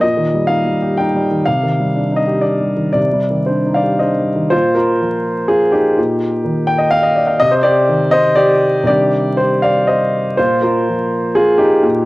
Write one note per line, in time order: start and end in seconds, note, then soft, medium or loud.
0.01 1.43 A#2 medium
0.01 0.49 D#5 medium
0.17 0.43 D#3 soft
0.34 0.60 G3 soft
0.47 0.75 D#4 soft
0.47 0.97 F5 medium
0.65 0.92 G3 soft
0.82 1.08 G4 soft
0.97 1.25 D#4 soft
0.97 1.47 G5 medium
1.15 1.41 G3 soft
1.31 1.47 D#3 soft
1.46 2.92 C3 medium
1.46 2.18 F5 medium
1.63 1.88 D#3 soft
1.80 2.05 G3 soft
1.96 2.21 D4 soft
2.11 2.37 D#4 soft
2.16 2.43 D#5 medium
2.27 2.54 G4 soft
2.41 2.71 D4 soft
2.41 2.91 D5 medium
2.60 2.89 G3 soft
2.77 3.06 D#3 soft
2.93 4.47 C3 soft
2.93 3.48 D5 medium
3.13 3.42 G3 soft
3.31 3.59 D#3 soft
3.46 3.76 D4 soft
3.46 3.99 C5 soft
3.66 3.94 D#4 soft
3.74 3.99 D5 medium
3.74 4.00 F5 medium
3.83 4.11 G4 soft
3.99 4.29 D4 soft
3.99 4.48 C5 soft
3.99 4.51 D#5 medium
4.19 4.46 G3 soft
4.36 4.52 D#3 soft
4.50 5.93 A#2 soft
4.50 4.75 F4 medium
4.50 4.76 C5 medium
4.75 5.46 F4 medium
4.75 5.49 A#4 medium
5.01 5.97 F3 soft
5.48 5.72 F4 medium
5.48 5.73 G#4 medium
5.72 6.64 D#4 soft
5.72 6.68 G4 medium
5.98 7.37 A#2 medium
6.45 7.41 D#3 soft
6.67 6.80 G5 medium
6.78 6.92 D#5 medium
6.91 7.04 F5 loud
7.03 7.16 D#5 medium
7.16 7.28 D5 medium
7.27 7.40 F5 medium
7.40 8.82 C3 medium
7.40 7.52 D#5 loud
7.51 7.64 C5 medium
7.63 8.10 G4 medium
7.63 8.12 D5 loud
7.89 8.83 D#3 soft
8.11 8.36 C5 medium
8.11 8.37 D#5 loud
8.36 8.84 G4 medium
8.36 8.86 D5 loud
8.83 10.33 C3 medium
8.83 10.34 D#3 soft
8.83 10.34 G3 soft
8.83 10.35 D4 soft
8.83 9.39 D5 medium
8.88 9.35 G4 medium
9.37 9.62 G4 medium
9.37 9.63 C5 medium
9.62 9.87 D5 medium
9.62 9.88 F5 medium
9.87 10.35 C5 medium
9.87 10.38 D#5 medium
10.37 11.80 A#2 medium
10.37 10.62 F4 medium
10.37 10.63 C5 medium
10.62 11.32 F4 medium
10.62 11.35 A#4 medium
10.89 11.84 F3 soft
11.35 11.58 F4 medium
11.35 11.60 G#4 medium
11.58 12.05 D#4 medium
11.58 12.05 G4 medium
11.83 12.05 A#2 medium